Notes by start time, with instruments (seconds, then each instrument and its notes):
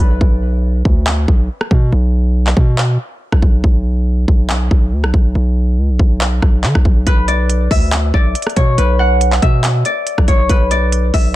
Already playing: harp B4 D5 E5 F#5
0.00 808-style bass B1
0.21 808-style bass B1, kick
0.85 808-style bass D2, kick
1.07 clap
1.28 808-style bass B1, kick
1.61 cross-stick
1.71 808-style bass B2, kick
1.92 808-style bass B1
2.47 clap
2.57 808-style bass B2, kick
2.78 clap
3.32 808-style bass B1, kick, cross-stick
3.42 808-style bass B1, kick
3.64 808-style bass B1, kick
4.28 808-style bass B1, kick
4.50 clap
4.71 808-style bass B1, kick
4.92 808-style bass D2
5.04 808-style bass B1, cross-stick
5.14 808-style bass B1, kick
5.35 808-style bass B1
5.78 808-style bass C#2
5.89 808-style bass B1
5.99 808-style bass B1, kick
6.21 clap
6.42 808-style bass B1, kick, cross-stick
6.64 808-style bass D3, clap
6.75 808-style bass B1, kick, cross-stick
6.85 808-style bass B1, kick
7.07 808-style bass B1, harp B4, kick, closed hi-hat
7.28 harp D5, closed hi-hat
7.50 closed hi-hat
7.71 808-style bass D2, harp E5, kick, open hi-hat
7.92 clap, closed hi-hat
8.14 808-style bass B1, harp D5, kick
8.35 closed hi-hat
8.42 closed hi-hat
8.47 cross-stick, closed hi-hat
8.56 808-style bass B2, harp C#5, kick, closed hi-hat
8.78 808-style bass B1, harp B4, closed hi-hat
8.99 harp F#5
9.21 closed hi-hat
9.32 clap
9.42 808-style bass B2, harp E5, kick, closed hi-hat
9.64 clap, closed hi-hat
9.85 harp D5, closed hi-hat
10.07 closed hi-hat
10.18 808-style bass B1, kick, cross-stick
10.28 808-style bass B1, harp C#5, kick, closed hi-hat
10.49 808-style bass B1, harp B4, kick, closed hi-hat
10.71 harp D5, closed hi-hat
10.92 closed hi-hat
11.14 808-style bass B1, harp E5, kick, open hi-hat